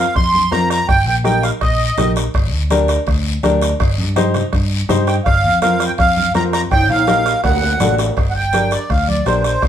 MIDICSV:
0, 0, Header, 1, 6, 480
1, 0, Start_track
1, 0, Key_signature, -2, "minor"
1, 0, Tempo, 364520
1, 1164, Time_signature, 4, 2, 24, 8
1, 12751, End_track
2, 0, Start_track
2, 0, Title_t, "Accordion"
2, 0, Program_c, 0, 21
2, 0, Note_on_c, 0, 77, 92
2, 195, Note_off_c, 0, 77, 0
2, 201, Note_on_c, 0, 84, 110
2, 682, Note_on_c, 0, 82, 99
2, 697, Note_off_c, 0, 84, 0
2, 906, Note_off_c, 0, 82, 0
2, 928, Note_on_c, 0, 82, 96
2, 1149, Note_off_c, 0, 82, 0
2, 1161, Note_on_c, 0, 79, 104
2, 1386, Note_off_c, 0, 79, 0
2, 1409, Note_on_c, 0, 79, 93
2, 1516, Note_off_c, 0, 79, 0
2, 1639, Note_on_c, 0, 79, 85
2, 1874, Note_on_c, 0, 77, 83
2, 1889, Note_off_c, 0, 79, 0
2, 1984, Note_off_c, 0, 77, 0
2, 2120, Note_on_c, 0, 75, 87
2, 2791, Note_off_c, 0, 75, 0
2, 6675, Note_on_c, 0, 79, 84
2, 6785, Note_off_c, 0, 79, 0
2, 6911, Note_on_c, 0, 77, 102
2, 7362, Note_off_c, 0, 77, 0
2, 7394, Note_on_c, 0, 77, 91
2, 7695, Note_off_c, 0, 77, 0
2, 7719, Note_on_c, 0, 79, 88
2, 7792, Note_off_c, 0, 79, 0
2, 7881, Note_on_c, 0, 77, 101
2, 8328, Note_off_c, 0, 77, 0
2, 8367, Note_on_c, 0, 82, 107
2, 8473, Note_off_c, 0, 82, 0
2, 8600, Note_on_c, 0, 82, 108
2, 8709, Note_off_c, 0, 82, 0
2, 8849, Note_on_c, 0, 79, 114
2, 9069, Note_off_c, 0, 79, 0
2, 9091, Note_on_c, 0, 77, 103
2, 9756, Note_off_c, 0, 77, 0
2, 9802, Note_on_c, 0, 78, 87
2, 10472, Note_off_c, 0, 78, 0
2, 10936, Note_on_c, 0, 78, 68
2, 10973, Note_off_c, 0, 78, 0
2, 10998, Note_on_c, 0, 79, 96
2, 11467, Note_off_c, 0, 79, 0
2, 11481, Note_on_c, 0, 74, 79
2, 11716, Note_off_c, 0, 74, 0
2, 11718, Note_on_c, 0, 77, 77
2, 11954, Note_off_c, 0, 77, 0
2, 11962, Note_on_c, 0, 74, 82
2, 12196, Note_off_c, 0, 74, 0
2, 12196, Note_on_c, 0, 72, 83
2, 12381, Note_on_c, 0, 71, 58
2, 12417, Note_off_c, 0, 71, 0
2, 12421, Note_off_c, 0, 72, 0
2, 12440, Note_on_c, 0, 72, 82
2, 12676, Note_off_c, 0, 72, 0
2, 12751, End_track
3, 0, Start_track
3, 0, Title_t, "Upright piano"
3, 0, Program_c, 1, 0
3, 674, Note_on_c, 1, 60, 71
3, 679, Note_on_c, 1, 65, 62
3, 680, Note_on_c, 1, 70, 78
3, 1016, Note_off_c, 1, 60, 0
3, 1018, Note_off_c, 1, 65, 0
3, 1018, Note_off_c, 1, 70, 0
3, 1635, Note_on_c, 1, 63, 73
3, 1637, Note_on_c, 1, 67, 69
3, 1647, Note_on_c, 1, 70, 83
3, 1976, Note_off_c, 1, 63, 0
3, 1977, Note_off_c, 1, 67, 0
3, 1982, Note_off_c, 1, 70, 0
3, 2602, Note_on_c, 1, 63, 69
3, 2607, Note_on_c, 1, 67, 63
3, 2614, Note_on_c, 1, 70, 71
3, 2939, Note_off_c, 1, 63, 0
3, 2942, Note_off_c, 1, 67, 0
3, 2945, Note_off_c, 1, 70, 0
3, 3563, Note_on_c, 1, 62, 91
3, 3568, Note_on_c, 1, 67, 74
3, 3568, Note_on_c, 1, 70, 92
3, 3899, Note_off_c, 1, 62, 0
3, 3902, Note_off_c, 1, 67, 0
3, 3902, Note_off_c, 1, 70, 0
3, 4519, Note_on_c, 1, 62, 84
3, 4521, Note_on_c, 1, 67, 78
3, 4529, Note_on_c, 1, 70, 89
3, 4857, Note_off_c, 1, 62, 0
3, 4858, Note_off_c, 1, 67, 0
3, 4862, Note_off_c, 1, 70, 0
3, 5478, Note_on_c, 1, 63, 92
3, 5484, Note_on_c, 1, 67, 81
3, 5490, Note_on_c, 1, 72, 97
3, 5817, Note_off_c, 1, 63, 0
3, 5819, Note_off_c, 1, 67, 0
3, 5822, Note_off_c, 1, 72, 0
3, 6438, Note_on_c, 1, 63, 85
3, 6439, Note_on_c, 1, 67, 80
3, 6448, Note_on_c, 1, 72, 104
3, 6776, Note_off_c, 1, 63, 0
3, 6777, Note_off_c, 1, 67, 0
3, 6781, Note_off_c, 1, 72, 0
3, 7398, Note_on_c, 1, 60, 69
3, 7404, Note_on_c, 1, 65, 68
3, 7408, Note_on_c, 1, 70, 89
3, 7736, Note_off_c, 1, 60, 0
3, 7739, Note_off_c, 1, 65, 0
3, 7741, Note_off_c, 1, 70, 0
3, 8354, Note_on_c, 1, 60, 66
3, 8360, Note_on_c, 1, 65, 70
3, 8360, Note_on_c, 1, 70, 74
3, 8694, Note_off_c, 1, 60, 0
3, 8697, Note_off_c, 1, 65, 0
3, 8697, Note_off_c, 1, 70, 0
3, 9312, Note_on_c, 1, 63, 68
3, 9319, Note_on_c, 1, 67, 66
3, 9319, Note_on_c, 1, 70, 87
3, 9653, Note_off_c, 1, 63, 0
3, 9657, Note_off_c, 1, 67, 0
3, 9657, Note_off_c, 1, 70, 0
3, 10275, Note_on_c, 1, 62, 73
3, 10277, Note_on_c, 1, 66, 67
3, 10283, Note_on_c, 1, 69, 73
3, 10615, Note_off_c, 1, 62, 0
3, 10616, Note_off_c, 1, 66, 0
3, 10619, Note_off_c, 1, 69, 0
3, 11232, Note_on_c, 1, 62, 72
3, 11238, Note_on_c, 1, 67, 62
3, 11243, Note_on_c, 1, 70, 73
3, 11574, Note_off_c, 1, 62, 0
3, 11577, Note_off_c, 1, 67, 0
3, 11580, Note_off_c, 1, 70, 0
3, 12190, Note_on_c, 1, 62, 72
3, 12199, Note_on_c, 1, 67, 61
3, 12206, Note_on_c, 1, 70, 75
3, 12534, Note_off_c, 1, 62, 0
3, 12538, Note_off_c, 1, 67, 0
3, 12542, Note_off_c, 1, 70, 0
3, 12751, End_track
4, 0, Start_track
4, 0, Title_t, "Fingered electric bass"
4, 0, Program_c, 2, 33
4, 203, Note_on_c, 2, 41, 93
4, 588, Note_off_c, 2, 41, 0
4, 681, Note_on_c, 2, 41, 104
4, 1067, Note_off_c, 2, 41, 0
4, 1161, Note_on_c, 2, 31, 94
4, 1397, Note_off_c, 2, 31, 0
4, 1397, Note_on_c, 2, 34, 92
4, 1976, Note_off_c, 2, 34, 0
4, 2125, Note_on_c, 2, 34, 97
4, 2509, Note_off_c, 2, 34, 0
4, 2600, Note_on_c, 2, 34, 94
4, 2986, Note_off_c, 2, 34, 0
4, 3082, Note_on_c, 2, 31, 96
4, 3324, Note_off_c, 2, 31, 0
4, 3324, Note_on_c, 2, 38, 95
4, 3900, Note_off_c, 2, 38, 0
4, 4044, Note_on_c, 2, 38, 99
4, 4427, Note_off_c, 2, 38, 0
4, 4520, Note_on_c, 2, 38, 109
4, 4905, Note_off_c, 2, 38, 0
4, 5005, Note_on_c, 2, 31, 83
4, 5244, Note_on_c, 2, 43, 95
4, 5264, Note_off_c, 2, 31, 0
4, 5819, Note_off_c, 2, 43, 0
4, 5961, Note_on_c, 2, 43, 96
4, 6346, Note_off_c, 2, 43, 0
4, 6445, Note_on_c, 2, 43, 101
4, 6828, Note_off_c, 2, 43, 0
4, 6926, Note_on_c, 2, 31, 90
4, 7167, Note_on_c, 2, 41, 94
4, 7187, Note_off_c, 2, 31, 0
4, 7741, Note_off_c, 2, 41, 0
4, 7885, Note_on_c, 2, 41, 99
4, 8268, Note_off_c, 2, 41, 0
4, 8354, Note_on_c, 2, 41, 109
4, 8741, Note_off_c, 2, 41, 0
4, 8841, Note_on_c, 2, 31, 94
4, 9076, Note_off_c, 2, 31, 0
4, 9076, Note_on_c, 2, 34, 93
4, 9655, Note_off_c, 2, 34, 0
4, 9797, Note_on_c, 2, 38, 96
4, 10183, Note_off_c, 2, 38, 0
4, 10271, Note_on_c, 2, 33, 103
4, 10660, Note_off_c, 2, 33, 0
4, 10760, Note_on_c, 2, 31, 79
4, 11530, Note_off_c, 2, 31, 0
4, 11716, Note_on_c, 2, 38, 83
4, 12104, Note_off_c, 2, 38, 0
4, 12194, Note_on_c, 2, 34, 91
4, 12583, Note_off_c, 2, 34, 0
4, 12679, Note_on_c, 2, 36, 84
4, 12751, Note_off_c, 2, 36, 0
4, 12751, End_track
5, 0, Start_track
5, 0, Title_t, "Two-headed folk drums"
5, 206, Note_on_c, 9, 36, 86
5, 208, Note_on_c, 9, 37, 82
5, 338, Note_off_c, 9, 36, 0
5, 340, Note_off_c, 9, 37, 0
5, 689, Note_on_c, 9, 37, 87
5, 821, Note_off_c, 9, 37, 0
5, 926, Note_on_c, 9, 37, 87
5, 1058, Note_off_c, 9, 37, 0
5, 1166, Note_on_c, 9, 36, 93
5, 1168, Note_on_c, 9, 37, 92
5, 1298, Note_off_c, 9, 36, 0
5, 1299, Note_off_c, 9, 37, 0
5, 1642, Note_on_c, 9, 37, 81
5, 1774, Note_off_c, 9, 37, 0
5, 1890, Note_on_c, 9, 37, 84
5, 2022, Note_off_c, 9, 37, 0
5, 2122, Note_on_c, 9, 37, 87
5, 2127, Note_on_c, 9, 36, 79
5, 2254, Note_off_c, 9, 37, 0
5, 2259, Note_off_c, 9, 36, 0
5, 2610, Note_on_c, 9, 37, 81
5, 2742, Note_off_c, 9, 37, 0
5, 2855, Note_on_c, 9, 37, 81
5, 2986, Note_off_c, 9, 37, 0
5, 3088, Note_on_c, 9, 36, 83
5, 3092, Note_on_c, 9, 37, 91
5, 3219, Note_off_c, 9, 36, 0
5, 3224, Note_off_c, 9, 37, 0
5, 3567, Note_on_c, 9, 37, 77
5, 3699, Note_off_c, 9, 37, 0
5, 3805, Note_on_c, 9, 37, 88
5, 3937, Note_off_c, 9, 37, 0
5, 4046, Note_on_c, 9, 36, 85
5, 4051, Note_on_c, 9, 37, 82
5, 4178, Note_off_c, 9, 36, 0
5, 4182, Note_off_c, 9, 37, 0
5, 4528, Note_on_c, 9, 37, 80
5, 4660, Note_off_c, 9, 37, 0
5, 4772, Note_on_c, 9, 37, 85
5, 4903, Note_off_c, 9, 37, 0
5, 5006, Note_on_c, 9, 37, 95
5, 5007, Note_on_c, 9, 36, 90
5, 5137, Note_off_c, 9, 37, 0
5, 5139, Note_off_c, 9, 36, 0
5, 5484, Note_on_c, 9, 37, 82
5, 5616, Note_off_c, 9, 37, 0
5, 5722, Note_on_c, 9, 37, 83
5, 5854, Note_off_c, 9, 37, 0
5, 5960, Note_on_c, 9, 37, 83
5, 5965, Note_on_c, 9, 36, 83
5, 6092, Note_off_c, 9, 37, 0
5, 6097, Note_off_c, 9, 36, 0
5, 6442, Note_on_c, 9, 37, 84
5, 6574, Note_off_c, 9, 37, 0
5, 6685, Note_on_c, 9, 37, 88
5, 6817, Note_off_c, 9, 37, 0
5, 6928, Note_on_c, 9, 36, 92
5, 6928, Note_on_c, 9, 37, 95
5, 7059, Note_off_c, 9, 37, 0
5, 7060, Note_off_c, 9, 36, 0
5, 7403, Note_on_c, 9, 37, 86
5, 7535, Note_off_c, 9, 37, 0
5, 7637, Note_on_c, 9, 37, 84
5, 7769, Note_off_c, 9, 37, 0
5, 7884, Note_on_c, 9, 37, 82
5, 7885, Note_on_c, 9, 36, 83
5, 8016, Note_off_c, 9, 37, 0
5, 8017, Note_off_c, 9, 36, 0
5, 8361, Note_on_c, 9, 37, 84
5, 8493, Note_off_c, 9, 37, 0
5, 8603, Note_on_c, 9, 37, 86
5, 8734, Note_off_c, 9, 37, 0
5, 8842, Note_on_c, 9, 36, 92
5, 8843, Note_on_c, 9, 37, 86
5, 8974, Note_off_c, 9, 36, 0
5, 8975, Note_off_c, 9, 37, 0
5, 9321, Note_on_c, 9, 37, 84
5, 9453, Note_off_c, 9, 37, 0
5, 9558, Note_on_c, 9, 37, 85
5, 9689, Note_off_c, 9, 37, 0
5, 9793, Note_on_c, 9, 37, 87
5, 9798, Note_on_c, 9, 36, 83
5, 9924, Note_off_c, 9, 37, 0
5, 9930, Note_off_c, 9, 36, 0
5, 10277, Note_on_c, 9, 37, 87
5, 10408, Note_off_c, 9, 37, 0
5, 10523, Note_on_c, 9, 37, 83
5, 10655, Note_off_c, 9, 37, 0
5, 10762, Note_on_c, 9, 36, 84
5, 10766, Note_on_c, 9, 37, 87
5, 10894, Note_off_c, 9, 36, 0
5, 10898, Note_off_c, 9, 37, 0
5, 11251, Note_on_c, 9, 37, 81
5, 11382, Note_off_c, 9, 37, 0
5, 11483, Note_on_c, 9, 37, 77
5, 11614, Note_off_c, 9, 37, 0
5, 11719, Note_on_c, 9, 36, 81
5, 11719, Note_on_c, 9, 37, 83
5, 11850, Note_off_c, 9, 37, 0
5, 11851, Note_off_c, 9, 36, 0
5, 12199, Note_on_c, 9, 37, 85
5, 12331, Note_off_c, 9, 37, 0
5, 12435, Note_on_c, 9, 37, 79
5, 12566, Note_off_c, 9, 37, 0
5, 12672, Note_on_c, 9, 37, 90
5, 12677, Note_on_c, 9, 36, 88
5, 12751, Note_off_c, 9, 36, 0
5, 12751, Note_off_c, 9, 37, 0
5, 12751, End_track
6, 0, Start_track
6, 0, Title_t, "Drums"
6, 214, Note_on_c, 9, 74, 73
6, 346, Note_off_c, 9, 74, 0
6, 451, Note_on_c, 9, 63, 74
6, 582, Note_off_c, 9, 63, 0
6, 686, Note_on_c, 9, 63, 76
6, 692, Note_on_c, 9, 73, 70
6, 818, Note_off_c, 9, 63, 0
6, 823, Note_off_c, 9, 73, 0
6, 932, Note_on_c, 9, 73, 70
6, 1063, Note_off_c, 9, 73, 0
6, 1171, Note_on_c, 9, 74, 69
6, 1303, Note_off_c, 9, 74, 0
6, 1649, Note_on_c, 9, 63, 85
6, 1649, Note_on_c, 9, 73, 70
6, 1780, Note_off_c, 9, 63, 0
6, 1781, Note_off_c, 9, 73, 0
6, 1888, Note_on_c, 9, 73, 65
6, 2019, Note_off_c, 9, 73, 0
6, 2126, Note_on_c, 9, 74, 74
6, 2257, Note_off_c, 9, 74, 0
6, 2602, Note_on_c, 9, 73, 73
6, 2604, Note_on_c, 9, 63, 86
6, 2604, Note_on_c, 9, 64, 83
6, 2734, Note_off_c, 9, 73, 0
6, 2736, Note_off_c, 9, 63, 0
6, 2736, Note_off_c, 9, 64, 0
6, 2842, Note_on_c, 9, 73, 73
6, 2974, Note_off_c, 9, 73, 0
6, 3082, Note_on_c, 9, 74, 68
6, 3088, Note_on_c, 9, 56, 100
6, 3213, Note_off_c, 9, 74, 0
6, 3220, Note_off_c, 9, 56, 0
6, 3559, Note_on_c, 9, 63, 84
6, 3561, Note_on_c, 9, 73, 69
6, 3572, Note_on_c, 9, 56, 70
6, 3690, Note_off_c, 9, 63, 0
6, 3693, Note_off_c, 9, 73, 0
6, 3704, Note_off_c, 9, 56, 0
6, 3795, Note_on_c, 9, 73, 64
6, 3926, Note_off_c, 9, 73, 0
6, 4037, Note_on_c, 9, 74, 76
6, 4055, Note_on_c, 9, 56, 91
6, 4169, Note_off_c, 9, 74, 0
6, 4187, Note_off_c, 9, 56, 0
6, 4521, Note_on_c, 9, 63, 81
6, 4521, Note_on_c, 9, 73, 73
6, 4532, Note_on_c, 9, 56, 71
6, 4652, Note_off_c, 9, 63, 0
6, 4653, Note_off_c, 9, 73, 0
6, 4663, Note_off_c, 9, 56, 0
6, 4759, Note_on_c, 9, 73, 78
6, 4891, Note_off_c, 9, 73, 0
6, 5003, Note_on_c, 9, 74, 71
6, 5010, Note_on_c, 9, 56, 113
6, 5134, Note_off_c, 9, 74, 0
6, 5142, Note_off_c, 9, 56, 0
6, 5482, Note_on_c, 9, 63, 87
6, 5482, Note_on_c, 9, 73, 74
6, 5500, Note_on_c, 9, 56, 72
6, 5614, Note_off_c, 9, 63, 0
6, 5614, Note_off_c, 9, 73, 0
6, 5631, Note_off_c, 9, 56, 0
6, 5719, Note_on_c, 9, 73, 67
6, 5725, Note_on_c, 9, 64, 76
6, 5850, Note_off_c, 9, 73, 0
6, 5856, Note_off_c, 9, 64, 0
6, 5964, Note_on_c, 9, 74, 74
6, 5977, Note_on_c, 9, 56, 81
6, 6095, Note_off_c, 9, 74, 0
6, 6108, Note_off_c, 9, 56, 0
6, 6438, Note_on_c, 9, 63, 80
6, 6438, Note_on_c, 9, 64, 84
6, 6446, Note_on_c, 9, 73, 72
6, 6458, Note_on_c, 9, 56, 73
6, 6570, Note_off_c, 9, 63, 0
6, 6570, Note_off_c, 9, 64, 0
6, 6578, Note_off_c, 9, 73, 0
6, 6590, Note_off_c, 9, 56, 0
6, 6679, Note_on_c, 9, 73, 70
6, 6811, Note_off_c, 9, 73, 0
6, 6928, Note_on_c, 9, 74, 73
6, 6937, Note_on_c, 9, 56, 108
6, 7060, Note_off_c, 9, 74, 0
6, 7069, Note_off_c, 9, 56, 0
6, 7399, Note_on_c, 9, 73, 73
6, 7406, Note_on_c, 9, 63, 81
6, 7412, Note_on_c, 9, 56, 73
6, 7531, Note_off_c, 9, 73, 0
6, 7538, Note_off_c, 9, 63, 0
6, 7544, Note_off_c, 9, 56, 0
6, 7642, Note_on_c, 9, 73, 71
6, 7773, Note_off_c, 9, 73, 0
6, 7877, Note_on_c, 9, 74, 74
6, 7894, Note_on_c, 9, 56, 88
6, 8009, Note_off_c, 9, 74, 0
6, 8026, Note_off_c, 9, 56, 0
6, 8125, Note_on_c, 9, 63, 82
6, 8256, Note_off_c, 9, 63, 0
6, 8354, Note_on_c, 9, 73, 65
6, 8361, Note_on_c, 9, 63, 90
6, 8369, Note_on_c, 9, 56, 76
6, 8369, Note_on_c, 9, 66, 73
6, 8486, Note_off_c, 9, 73, 0
6, 8493, Note_off_c, 9, 63, 0
6, 8500, Note_off_c, 9, 56, 0
6, 8500, Note_off_c, 9, 66, 0
6, 8602, Note_on_c, 9, 73, 74
6, 8734, Note_off_c, 9, 73, 0
6, 8838, Note_on_c, 9, 74, 69
6, 8850, Note_on_c, 9, 56, 106
6, 8850, Note_on_c, 9, 65, 94
6, 8970, Note_off_c, 9, 74, 0
6, 8981, Note_off_c, 9, 56, 0
6, 8981, Note_off_c, 9, 65, 0
6, 9093, Note_on_c, 9, 65, 104
6, 9225, Note_off_c, 9, 65, 0
6, 9313, Note_on_c, 9, 73, 72
6, 9319, Note_on_c, 9, 56, 69
6, 9319, Note_on_c, 9, 66, 77
6, 9323, Note_on_c, 9, 63, 90
6, 9445, Note_off_c, 9, 73, 0
6, 9451, Note_off_c, 9, 56, 0
6, 9451, Note_off_c, 9, 66, 0
6, 9454, Note_off_c, 9, 63, 0
6, 9560, Note_on_c, 9, 73, 67
6, 9691, Note_off_c, 9, 73, 0
6, 9794, Note_on_c, 9, 74, 76
6, 9804, Note_on_c, 9, 56, 85
6, 9804, Note_on_c, 9, 66, 103
6, 9926, Note_off_c, 9, 74, 0
6, 9936, Note_off_c, 9, 56, 0
6, 9936, Note_off_c, 9, 66, 0
6, 10041, Note_on_c, 9, 66, 96
6, 10173, Note_off_c, 9, 66, 0
6, 10272, Note_on_c, 9, 73, 78
6, 10279, Note_on_c, 9, 56, 75
6, 10279, Note_on_c, 9, 66, 87
6, 10280, Note_on_c, 9, 63, 85
6, 10280, Note_on_c, 9, 64, 85
6, 10404, Note_off_c, 9, 73, 0
6, 10411, Note_off_c, 9, 56, 0
6, 10411, Note_off_c, 9, 63, 0
6, 10411, Note_off_c, 9, 64, 0
6, 10411, Note_off_c, 9, 66, 0
6, 10513, Note_on_c, 9, 73, 73
6, 10519, Note_on_c, 9, 66, 96
6, 10645, Note_off_c, 9, 73, 0
6, 10651, Note_off_c, 9, 66, 0
6, 10754, Note_on_c, 9, 56, 109
6, 10757, Note_on_c, 9, 74, 66
6, 10885, Note_off_c, 9, 56, 0
6, 10889, Note_off_c, 9, 74, 0
6, 11230, Note_on_c, 9, 73, 73
6, 11238, Note_on_c, 9, 56, 67
6, 11239, Note_on_c, 9, 63, 80
6, 11362, Note_off_c, 9, 73, 0
6, 11370, Note_off_c, 9, 56, 0
6, 11371, Note_off_c, 9, 63, 0
6, 11469, Note_on_c, 9, 73, 65
6, 11600, Note_off_c, 9, 73, 0
6, 11719, Note_on_c, 9, 74, 69
6, 11720, Note_on_c, 9, 56, 84
6, 11851, Note_off_c, 9, 74, 0
6, 11852, Note_off_c, 9, 56, 0
6, 11958, Note_on_c, 9, 63, 77
6, 12090, Note_off_c, 9, 63, 0
6, 12195, Note_on_c, 9, 73, 65
6, 12196, Note_on_c, 9, 63, 78
6, 12203, Note_on_c, 9, 56, 76
6, 12326, Note_off_c, 9, 73, 0
6, 12328, Note_off_c, 9, 63, 0
6, 12334, Note_off_c, 9, 56, 0
6, 12436, Note_on_c, 9, 73, 70
6, 12568, Note_off_c, 9, 73, 0
6, 12679, Note_on_c, 9, 56, 101
6, 12684, Note_on_c, 9, 74, 67
6, 12751, Note_off_c, 9, 56, 0
6, 12751, Note_off_c, 9, 74, 0
6, 12751, End_track
0, 0, End_of_file